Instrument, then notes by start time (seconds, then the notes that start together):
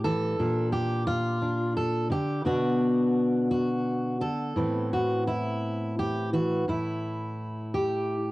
steel-string acoustic guitar
Already playing: A2
0.04 E3 A4
0.39 A#2 D4
0.72 G4
1.07 F4
1.42 D4
1.77 A4
2.10 D3 G4
2.45 B2 D3 B3 D4 F#4
3.51 F#4
4.21 D3 A4
4.56 A2 E3 B3 C4
4.93 F#4
5.27 E4
5.99 G4
6.33 E3 F#4
6.68 A2 E4
7.74 G4